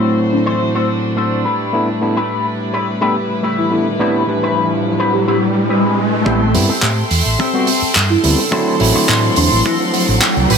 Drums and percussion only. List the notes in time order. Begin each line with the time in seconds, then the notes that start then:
6.26 kick
6.55 open hi-hat
6.82 kick, clap
7.11 open hi-hat
7.40 kick
7.67 open hi-hat
7.95 kick, clap
8.24 open hi-hat
8.52 kick
8.80 open hi-hat
9.09 kick, clap
9.36 open hi-hat
9.66 kick
9.94 open hi-hat
10.22 kick, clap
10.50 open hi-hat